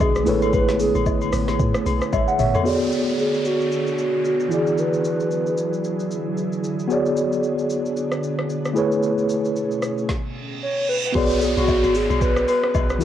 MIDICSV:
0, 0, Header, 1, 8, 480
1, 0, Start_track
1, 0, Tempo, 530973
1, 482, Time_signature, 4, 2, 24, 8
1, 11790, End_track
2, 0, Start_track
2, 0, Title_t, "Soft synth lead"
2, 0, Program_c, 0, 80
2, 6, Note_on_c, 0, 68, 86
2, 246, Note_on_c, 0, 69, 88
2, 260, Note_off_c, 0, 68, 0
2, 378, Note_off_c, 0, 69, 0
2, 383, Note_on_c, 0, 69, 84
2, 483, Note_on_c, 0, 71, 93
2, 497, Note_off_c, 0, 69, 0
2, 721, Note_off_c, 0, 71, 0
2, 726, Note_on_c, 0, 68, 83
2, 1171, Note_off_c, 0, 68, 0
2, 2889, Note_on_c, 0, 68, 87
2, 3109, Note_off_c, 0, 68, 0
2, 3128, Note_on_c, 0, 66, 95
2, 3809, Note_off_c, 0, 66, 0
2, 3848, Note_on_c, 0, 66, 90
2, 4069, Note_off_c, 0, 66, 0
2, 4086, Note_on_c, 0, 68, 97
2, 4326, Note_on_c, 0, 71, 107
2, 4340, Note_off_c, 0, 68, 0
2, 6004, Note_off_c, 0, 71, 0
2, 9606, Note_on_c, 0, 73, 108
2, 9827, Note_off_c, 0, 73, 0
2, 9847, Note_on_c, 0, 71, 103
2, 9908, Note_off_c, 0, 71, 0
2, 9987, Note_on_c, 0, 71, 106
2, 10328, Note_on_c, 0, 68, 99
2, 10341, Note_off_c, 0, 71, 0
2, 10464, Note_off_c, 0, 68, 0
2, 10468, Note_on_c, 0, 66, 101
2, 10808, Note_on_c, 0, 68, 100
2, 10821, Note_off_c, 0, 66, 0
2, 11045, Note_off_c, 0, 68, 0
2, 11049, Note_on_c, 0, 71, 110
2, 11269, Note_off_c, 0, 71, 0
2, 11287, Note_on_c, 0, 71, 109
2, 11782, Note_off_c, 0, 71, 0
2, 11790, End_track
3, 0, Start_track
3, 0, Title_t, "Tine electric piano"
3, 0, Program_c, 1, 4
3, 0, Control_c, 1, 64, 127
3, 0, Note_on_c, 1, 59, 70
3, 0, Note_on_c, 1, 66, 64
3, 0, Note_on_c, 1, 68, 62
3, 0, Note_on_c, 1, 71, 65
3, 0, Note_on_c, 1, 74, 78
3, 197, Note_off_c, 1, 59, 0
3, 203, Note_off_c, 1, 66, 0
3, 209, Note_off_c, 1, 68, 0
3, 215, Note_off_c, 1, 71, 0
3, 216, Note_on_c, 1, 57, 70
3, 221, Note_off_c, 1, 74, 0
3, 228, Note_on_c, 1, 64, 62
3, 240, Note_on_c, 1, 68, 63
3, 252, Note_on_c, 1, 71, 66
3, 255, Control_c, 1, 64, 0
3, 264, Note_on_c, 1, 73, 77
3, 440, Control_c, 1, 64, 127
3, 1887, Note_off_c, 1, 68, 0
3, 1893, Note_off_c, 1, 71, 0
3, 1900, Note_off_c, 1, 73, 0
3, 1921, Note_on_c, 1, 76, 64
3, 1927, Note_on_c, 1, 73, 54
3, 2054, Note_off_c, 1, 76, 0
3, 2057, Note_off_c, 1, 73, 0
3, 2059, Note_on_c, 1, 78, 72
3, 2113, Note_off_c, 1, 57, 0
3, 2119, Note_off_c, 1, 64, 0
3, 2156, Note_off_c, 1, 78, 0
3, 2162, Note_on_c, 1, 76, 74
3, 2166, Note_on_c, 1, 73, 63
3, 2290, Note_off_c, 1, 73, 0
3, 2294, Note_off_c, 1, 76, 0
3, 2301, Note_on_c, 1, 73, 70
3, 2306, Note_on_c, 1, 69, 57
3, 2378, Note_on_c, 1, 59, 77
3, 2389, Note_on_c, 1, 66, 70
3, 2402, Note_on_c, 1, 68, 67
3, 2403, Note_off_c, 1, 73, 0
3, 2412, Control_c, 1, 64, 0
3, 2414, Note_on_c, 1, 73, 69
3, 2426, Note_on_c, 1, 74, 82
3, 2532, Note_off_c, 1, 69, 0
3, 2557, Control_c, 1, 64, 127
3, 4036, Note_off_c, 1, 59, 0
3, 4042, Note_off_c, 1, 66, 0
3, 4048, Note_off_c, 1, 68, 0
3, 4055, Note_off_c, 1, 73, 0
3, 4058, Note_on_c, 1, 52, 63
3, 4060, Note_off_c, 1, 74, 0
3, 4070, Note_on_c, 1, 64, 58
3, 4082, Note_on_c, 1, 66, 60
3, 4093, Control_c, 1, 64, 0
3, 4093, Note_on_c, 1, 68, 58
3, 4106, Note_on_c, 1, 74, 69
3, 4227, Control_c, 1, 64, 127
3, 5954, Note_off_c, 1, 52, 0
3, 5960, Note_off_c, 1, 64, 0
3, 5966, Note_off_c, 1, 66, 0
3, 5972, Note_off_c, 1, 68, 0
3, 5978, Note_off_c, 1, 74, 0
3, 6217, Note_on_c, 1, 59, 79
3, 6228, Note_on_c, 1, 66, 72
3, 6240, Note_on_c, 1, 68, 72
3, 6253, Control_c, 1, 64, 0
3, 6253, Note_on_c, 1, 73, 72
3, 6263, Note_on_c, 1, 74, 84
3, 6418, Control_c, 1, 64, 127
3, 7875, Note_off_c, 1, 59, 0
3, 7881, Note_off_c, 1, 66, 0
3, 7887, Note_off_c, 1, 68, 0
3, 7894, Note_off_c, 1, 73, 0
3, 7894, Note_on_c, 1, 57, 80
3, 7899, Note_off_c, 1, 74, 0
3, 7905, Note_on_c, 1, 64, 71
3, 7918, Note_on_c, 1, 68, 69
3, 7930, Note_on_c, 1, 71, 71
3, 7934, Control_c, 1, 64, 0
3, 7942, Note_on_c, 1, 73, 84
3, 8086, Control_c, 1, 64, 127
3, 9084, Note_off_c, 1, 57, 0
3, 9089, Note_off_c, 1, 64, 0
3, 9096, Note_off_c, 1, 68, 0
3, 9102, Note_off_c, 1, 71, 0
3, 9108, Note_off_c, 1, 73, 0
3, 9133, Control_c, 1, 64, 0
3, 10057, Note_on_c, 1, 59, 71
3, 10070, Note_on_c, 1, 66, 64
3, 10082, Note_on_c, 1, 68, 66
3, 10093, Note_on_c, 1, 73, 61
3, 10106, Note_on_c, 1, 74, 79
3, 10277, Control_c, 1, 64, 127
3, 11716, Note_off_c, 1, 59, 0
3, 11722, Note_off_c, 1, 66, 0
3, 11728, Note_off_c, 1, 68, 0
3, 11734, Note_off_c, 1, 73, 0
3, 11739, Note_on_c, 1, 52, 71
3, 11741, Note_off_c, 1, 74, 0
3, 11751, Note_on_c, 1, 64, 65
3, 11762, Note_on_c, 1, 66, 67
3, 11772, Control_c, 1, 64, 0
3, 11790, Note_off_c, 1, 52, 0
3, 11790, Note_off_c, 1, 64, 0
3, 11790, Note_off_c, 1, 66, 0
3, 11790, End_track
4, 0, Start_track
4, 0, Title_t, "Ambient pad"
4, 0, Program_c, 2, 92
4, 0, Note_on_c, 2, 50, 80
4, 0, Note_on_c, 2, 56, 72
4, 0, Note_on_c, 2, 59, 70
4, 0, Note_on_c, 2, 62, 87
4, 206, Note_off_c, 2, 56, 0
4, 225, Note_off_c, 2, 62, 0
4, 243, Note_on_c, 2, 57, 68
4, 243, Note_on_c, 2, 68, 84
4, 2366, Note_off_c, 2, 50, 0
4, 2366, Note_off_c, 2, 59, 0
4, 2381, Note_off_c, 2, 57, 0
4, 2381, Note_off_c, 2, 68, 0
4, 2400, Note_on_c, 2, 62, 65
4, 2401, Note_on_c, 2, 59, 68
4, 2401, Note_on_c, 2, 68, 81
4, 2402, Note_on_c, 2, 50, 74
4, 4064, Note_off_c, 2, 62, 0
4, 4065, Note_off_c, 2, 50, 0
4, 4065, Note_off_c, 2, 59, 0
4, 4085, Note_on_c, 2, 54, 67
4, 4085, Note_on_c, 2, 64, 69
4, 4087, Note_on_c, 2, 50, 74
4, 6222, Note_off_c, 2, 54, 0
4, 6222, Note_off_c, 2, 64, 0
4, 6223, Note_off_c, 2, 50, 0
4, 6242, Note_on_c, 2, 59, 68
4, 6243, Note_on_c, 2, 50, 73
4, 6243, Note_on_c, 2, 62, 67
4, 7905, Note_off_c, 2, 59, 0
4, 7905, Note_off_c, 2, 62, 0
4, 7906, Note_off_c, 2, 50, 0
4, 9085, Note_off_c, 2, 68, 0
4, 11790, End_track
5, 0, Start_track
5, 0, Title_t, "Log drum bass"
5, 0, Program_c, 3, 39
5, 2, Note_on_c, 3, 35, 105
5, 231, Note_off_c, 3, 35, 0
5, 242, Note_on_c, 3, 33, 97
5, 471, Note_off_c, 3, 33, 0
5, 482, Note_on_c, 3, 33, 111
5, 844, Note_off_c, 3, 33, 0
5, 860, Note_on_c, 3, 33, 100
5, 1186, Note_off_c, 3, 33, 0
5, 1200, Note_on_c, 3, 33, 106
5, 1430, Note_off_c, 3, 33, 0
5, 1442, Note_on_c, 3, 45, 101
5, 1575, Note_off_c, 3, 45, 0
5, 1680, Note_on_c, 3, 35, 99
5, 1814, Note_off_c, 3, 35, 0
5, 1923, Note_on_c, 3, 33, 97
5, 2055, Note_off_c, 3, 33, 0
5, 2161, Note_on_c, 3, 32, 90
5, 2294, Note_off_c, 3, 32, 0
5, 10082, Note_on_c, 3, 35, 107
5, 10444, Note_off_c, 3, 35, 0
5, 10462, Note_on_c, 3, 35, 91
5, 10691, Note_off_c, 3, 35, 0
5, 10702, Note_on_c, 3, 32, 89
5, 10931, Note_off_c, 3, 32, 0
5, 10940, Note_on_c, 3, 35, 99
5, 11266, Note_off_c, 3, 35, 0
5, 11524, Note_on_c, 3, 35, 94
5, 11760, Note_on_c, 3, 40, 94
5, 11773, Note_off_c, 3, 35, 0
5, 11790, Note_off_c, 3, 40, 0
5, 11790, End_track
6, 0, Start_track
6, 0, Title_t, "Downlifter"
6, 0, Program_c, 4, 103
6, 2400, Note_on_c, 4, 60, 76
6, 6241, Note_off_c, 4, 60, 0
6, 10082, Note_on_c, 4, 60, 89
6, 11790, Note_off_c, 4, 60, 0
6, 11790, End_track
7, 0, Start_track
7, 0, Title_t, "Reverse cymbal"
7, 0, Program_c, 5, 119
7, 9121, Note_on_c, 5, 60, 80
7, 10081, Note_off_c, 5, 60, 0
7, 11790, End_track
8, 0, Start_track
8, 0, Title_t, "Drums"
8, 2, Note_on_c, 9, 82, 71
8, 3, Note_on_c, 9, 36, 104
8, 5, Note_on_c, 9, 67, 82
8, 5, Note_on_c, 9, 77, 83
8, 92, Note_off_c, 9, 82, 0
8, 93, Note_off_c, 9, 36, 0
8, 95, Note_off_c, 9, 67, 0
8, 95, Note_off_c, 9, 77, 0
8, 138, Note_on_c, 9, 82, 50
8, 144, Note_on_c, 9, 37, 85
8, 229, Note_off_c, 9, 82, 0
8, 234, Note_off_c, 9, 37, 0
8, 239, Note_on_c, 9, 46, 55
8, 239, Note_on_c, 9, 82, 94
8, 329, Note_off_c, 9, 46, 0
8, 329, Note_off_c, 9, 82, 0
8, 379, Note_on_c, 9, 82, 49
8, 382, Note_on_c, 9, 67, 81
8, 469, Note_off_c, 9, 82, 0
8, 473, Note_off_c, 9, 67, 0
8, 480, Note_on_c, 9, 82, 76
8, 481, Note_on_c, 9, 36, 118
8, 483, Note_on_c, 9, 67, 80
8, 570, Note_off_c, 9, 82, 0
8, 572, Note_off_c, 9, 36, 0
8, 573, Note_off_c, 9, 67, 0
8, 620, Note_on_c, 9, 38, 70
8, 620, Note_on_c, 9, 82, 50
8, 710, Note_off_c, 9, 82, 0
8, 711, Note_off_c, 9, 38, 0
8, 719, Note_on_c, 9, 46, 59
8, 719, Note_on_c, 9, 82, 105
8, 810, Note_off_c, 9, 46, 0
8, 810, Note_off_c, 9, 82, 0
8, 860, Note_on_c, 9, 82, 51
8, 862, Note_on_c, 9, 67, 66
8, 950, Note_off_c, 9, 82, 0
8, 952, Note_off_c, 9, 67, 0
8, 959, Note_on_c, 9, 82, 65
8, 960, Note_on_c, 9, 36, 93
8, 962, Note_on_c, 9, 77, 76
8, 1050, Note_off_c, 9, 82, 0
8, 1051, Note_off_c, 9, 36, 0
8, 1053, Note_off_c, 9, 77, 0
8, 1098, Note_on_c, 9, 82, 50
8, 1100, Note_on_c, 9, 67, 71
8, 1188, Note_off_c, 9, 82, 0
8, 1191, Note_off_c, 9, 67, 0
8, 1199, Note_on_c, 9, 37, 96
8, 1199, Note_on_c, 9, 46, 60
8, 1199, Note_on_c, 9, 82, 99
8, 1289, Note_off_c, 9, 37, 0
8, 1289, Note_off_c, 9, 46, 0
8, 1289, Note_off_c, 9, 82, 0
8, 1338, Note_on_c, 9, 38, 65
8, 1342, Note_on_c, 9, 67, 76
8, 1342, Note_on_c, 9, 82, 45
8, 1428, Note_off_c, 9, 38, 0
8, 1432, Note_off_c, 9, 67, 0
8, 1432, Note_off_c, 9, 82, 0
8, 1441, Note_on_c, 9, 36, 113
8, 1441, Note_on_c, 9, 82, 76
8, 1531, Note_off_c, 9, 36, 0
8, 1531, Note_off_c, 9, 82, 0
8, 1576, Note_on_c, 9, 37, 107
8, 1578, Note_on_c, 9, 82, 59
8, 1666, Note_off_c, 9, 37, 0
8, 1669, Note_off_c, 9, 82, 0
8, 1683, Note_on_c, 9, 46, 48
8, 1683, Note_on_c, 9, 82, 81
8, 1684, Note_on_c, 9, 67, 77
8, 1773, Note_off_c, 9, 46, 0
8, 1773, Note_off_c, 9, 82, 0
8, 1775, Note_off_c, 9, 67, 0
8, 1821, Note_on_c, 9, 82, 56
8, 1822, Note_on_c, 9, 37, 95
8, 1911, Note_off_c, 9, 82, 0
8, 1912, Note_off_c, 9, 37, 0
8, 1921, Note_on_c, 9, 48, 63
8, 1922, Note_on_c, 9, 36, 97
8, 1922, Note_on_c, 9, 82, 70
8, 1924, Note_on_c, 9, 67, 82
8, 1924, Note_on_c, 9, 77, 81
8, 2011, Note_off_c, 9, 48, 0
8, 2012, Note_off_c, 9, 82, 0
8, 2013, Note_off_c, 9, 36, 0
8, 2014, Note_off_c, 9, 67, 0
8, 2014, Note_off_c, 9, 77, 0
8, 2060, Note_on_c, 9, 82, 54
8, 2150, Note_off_c, 9, 82, 0
8, 2160, Note_on_c, 9, 46, 54
8, 2160, Note_on_c, 9, 82, 91
8, 2161, Note_on_c, 9, 45, 94
8, 2251, Note_off_c, 9, 45, 0
8, 2251, Note_off_c, 9, 46, 0
8, 2251, Note_off_c, 9, 82, 0
8, 2300, Note_on_c, 9, 82, 49
8, 2301, Note_on_c, 9, 43, 99
8, 2304, Note_on_c, 9, 67, 79
8, 2391, Note_off_c, 9, 43, 0
8, 2391, Note_off_c, 9, 82, 0
8, 2394, Note_off_c, 9, 67, 0
8, 2401, Note_on_c, 9, 82, 73
8, 2491, Note_off_c, 9, 82, 0
8, 2539, Note_on_c, 9, 82, 45
8, 2630, Note_off_c, 9, 82, 0
8, 2641, Note_on_c, 9, 82, 97
8, 2731, Note_off_c, 9, 82, 0
8, 2781, Note_on_c, 9, 82, 48
8, 2871, Note_off_c, 9, 82, 0
8, 2880, Note_on_c, 9, 82, 61
8, 2970, Note_off_c, 9, 82, 0
8, 3019, Note_on_c, 9, 82, 47
8, 3110, Note_off_c, 9, 82, 0
8, 3120, Note_on_c, 9, 82, 94
8, 3210, Note_off_c, 9, 82, 0
8, 3263, Note_on_c, 9, 82, 44
8, 3354, Note_off_c, 9, 82, 0
8, 3362, Note_on_c, 9, 82, 70
8, 3453, Note_off_c, 9, 82, 0
8, 3499, Note_on_c, 9, 82, 54
8, 3590, Note_off_c, 9, 82, 0
8, 3603, Note_on_c, 9, 82, 76
8, 3693, Note_off_c, 9, 82, 0
8, 3842, Note_on_c, 9, 82, 65
8, 3933, Note_off_c, 9, 82, 0
8, 3979, Note_on_c, 9, 82, 50
8, 4070, Note_off_c, 9, 82, 0
8, 4082, Note_on_c, 9, 82, 86
8, 4172, Note_off_c, 9, 82, 0
8, 4221, Note_on_c, 9, 82, 44
8, 4312, Note_off_c, 9, 82, 0
8, 4322, Note_on_c, 9, 82, 72
8, 4412, Note_off_c, 9, 82, 0
8, 4461, Note_on_c, 9, 82, 46
8, 4551, Note_off_c, 9, 82, 0
8, 4562, Note_on_c, 9, 82, 94
8, 4652, Note_off_c, 9, 82, 0
8, 4703, Note_on_c, 9, 82, 49
8, 4793, Note_off_c, 9, 82, 0
8, 4801, Note_on_c, 9, 82, 60
8, 4891, Note_off_c, 9, 82, 0
8, 4940, Note_on_c, 9, 82, 46
8, 5031, Note_off_c, 9, 82, 0
8, 5040, Note_on_c, 9, 82, 92
8, 5131, Note_off_c, 9, 82, 0
8, 5183, Note_on_c, 9, 82, 44
8, 5273, Note_off_c, 9, 82, 0
8, 5282, Note_on_c, 9, 82, 71
8, 5373, Note_off_c, 9, 82, 0
8, 5420, Note_on_c, 9, 82, 53
8, 5510, Note_off_c, 9, 82, 0
8, 5523, Note_on_c, 9, 82, 76
8, 5613, Note_off_c, 9, 82, 0
8, 5761, Note_on_c, 9, 82, 64
8, 5852, Note_off_c, 9, 82, 0
8, 5899, Note_on_c, 9, 82, 46
8, 5989, Note_off_c, 9, 82, 0
8, 6001, Note_on_c, 9, 82, 88
8, 6092, Note_off_c, 9, 82, 0
8, 6140, Note_on_c, 9, 82, 46
8, 6231, Note_off_c, 9, 82, 0
8, 6241, Note_on_c, 9, 82, 74
8, 6332, Note_off_c, 9, 82, 0
8, 6381, Note_on_c, 9, 82, 44
8, 6471, Note_off_c, 9, 82, 0
8, 6480, Note_on_c, 9, 82, 93
8, 6570, Note_off_c, 9, 82, 0
8, 6621, Note_on_c, 9, 82, 47
8, 6711, Note_off_c, 9, 82, 0
8, 6721, Note_on_c, 9, 82, 58
8, 6811, Note_off_c, 9, 82, 0
8, 6859, Note_on_c, 9, 82, 47
8, 6950, Note_off_c, 9, 82, 0
8, 6960, Note_on_c, 9, 82, 94
8, 7051, Note_off_c, 9, 82, 0
8, 7102, Note_on_c, 9, 82, 45
8, 7192, Note_off_c, 9, 82, 0
8, 7202, Note_on_c, 9, 82, 72
8, 7292, Note_off_c, 9, 82, 0
8, 7337, Note_on_c, 9, 37, 96
8, 7339, Note_on_c, 9, 82, 53
8, 7427, Note_off_c, 9, 37, 0
8, 7430, Note_off_c, 9, 82, 0
8, 7443, Note_on_c, 9, 82, 75
8, 7533, Note_off_c, 9, 82, 0
8, 7582, Note_on_c, 9, 37, 89
8, 7672, Note_off_c, 9, 37, 0
8, 7681, Note_on_c, 9, 82, 64
8, 7771, Note_off_c, 9, 82, 0
8, 7818, Note_on_c, 9, 82, 51
8, 7823, Note_on_c, 9, 37, 84
8, 7908, Note_off_c, 9, 82, 0
8, 7914, Note_off_c, 9, 37, 0
8, 7919, Note_on_c, 9, 82, 84
8, 8010, Note_off_c, 9, 82, 0
8, 8059, Note_on_c, 9, 82, 46
8, 8149, Note_off_c, 9, 82, 0
8, 8161, Note_on_c, 9, 82, 75
8, 8251, Note_off_c, 9, 82, 0
8, 8299, Note_on_c, 9, 82, 46
8, 8389, Note_off_c, 9, 82, 0
8, 8400, Note_on_c, 9, 82, 98
8, 8490, Note_off_c, 9, 82, 0
8, 8541, Note_on_c, 9, 82, 50
8, 8632, Note_off_c, 9, 82, 0
8, 8641, Note_on_c, 9, 82, 60
8, 8731, Note_off_c, 9, 82, 0
8, 8780, Note_on_c, 9, 82, 48
8, 8870, Note_off_c, 9, 82, 0
8, 8879, Note_on_c, 9, 37, 94
8, 8880, Note_on_c, 9, 82, 96
8, 8970, Note_off_c, 9, 37, 0
8, 8970, Note_off_c, 9, 82, 0
8, 9022, Note_on_c, 9, 82, 44
8, 9113, Note_off_c, 9, 82, 0
8, 9121, Note_on_c, 9, 36, 99
8, 9121, Note_on_c, 9, 38, 85
8, 9211, Note_off_c, 9, 36, 0
8, 9211, Note_off_c, 9, 38, 0
8, 10081, Note_on_c, 9, 67, 83
8, 10081, Note_on_c, 9, 82, 80
8, 10082, Note_on_c, 9, 36, 118
8, 10082, Note_on_c, 9, 49, 109
8, 10171, Note_off_c, 9, 67, 0
8, 10172, Note_off_c, 9, 49, 0
8, 10172, Note_off_c, 9, 82, 0
8, 10173, Note_off_c, 9, 36, 0
8, 10221, Note_on_c, 9, 82, 52
8, 10311, Note_off_c, 9, 82, 0
8, 10321, Note_on_c, 9, 46, 60
8, 10321, Note_on_c, 9, 82, 99
8, 10412, Note_off_c, 9, 46, 0
8, 10412, Note_off_c, 9, 82, 0
8, 10462, Note_on_c, 9, 82, 55
8, 10463, Note_on_c, 9, 67, 68
8, 10553, Note_off_c, 9, 82, 0
8, 10554, Note_off_c, 9, 67, 0
8, 10562, Note_on_c, 9, 36, 97
8, 10562, Note_on_c, 9, 77, 77
8, 10562, Note_on_c, 9, 82, 62
8, 10652, Note_off_c, 9, 36, 0
8, 10653, Note_off_c, 9, 77, 0
8, 10653, Note_off_c, 9, 82, 0
8, 10699, Note_on_c, 9, 67, 72
8, 10702, Note_on_c, 9, 82, 55
8, 10789, Note_off_c, 9, 67, 0
8, 10792, Note_off_c, 9, 82, 0
8, 10801, Note_on_c, 9, 46, 59
8, 10801, Note_on_c, 9, 82, 98
8, 10892, Note_off_c, 9, 46, 0
8, 10892, Note_off_c, 9, 82, 0
8, 10942, Note_on_c, 9, 67, 77
8, 10944, Note_on_c, 9, 82, 49
8, 11032, Note_off_c, 9, 67, 0
8, 11035, Note_off_c, 9, 82, 0
8, 11043, Note_on_c, 9, 36, 110
8, 11043, Note_on_c, 9, 82, 78
8, 11133, Note_off_c, 9, 36, 0
8, 11133, Note_off_c, 9, 82, 0
8, 11179, Note_on_c, 9, 37, 110
8, 11181, Note_on_c, 9, 82, 61
8, 11269, Note_off_c, 9, 37, 0
8, 11271, Note_off_c, 9, 82, 0
8, 11284, Note_on_c, 9, 46, 49
8, 11284, Note_on_c, 9, 82, 80
8, 11285, Note_on_c, 9, 67, 84
8, 11375, Note_off_c, 9, 46, 0
8, 11375, Note_off_c, 9, 67, 0
8, 11375, Note_off_c, 9, 82, 0
8, 11422, Note_on_c, 9, 37, 98
8, 11513, Note_off_c, 9, 37, 0
8, 11522, Note_on_c, 9, 82, 73
8, 11523, Note_on_c, 9, 36, 103
8, 11523, Note_on_c, 9, 67, 80
8, 11523, Note_on_c, 9, 77, 85
8, 11613, Note_off_c, 9, 67, 0
8, 11613, Note_off_c, 9, 77, 0
8, 11613, Note_off_c, 9, 82, 0
8, 11614, Note_off_c, 9, 36, 0
8, 11659, Note_on_c, 9, 82, 53
8, 11664, Note_on_c, 9, 37, 87
8, 11749, Note_off_c, 9, 82, 0
8, 11754, Note_off_c, 9, 37, 0
8, 11759, Note_on_c, 9, 46, 57
8, 11759, Note_on_c, 9, 82, 95
8, 11790, Note_off_c, 9, 46, 0
8, 11790, Note_off_c, 9, 82, 0
8, 11790, End_track
0, 0, End_of_file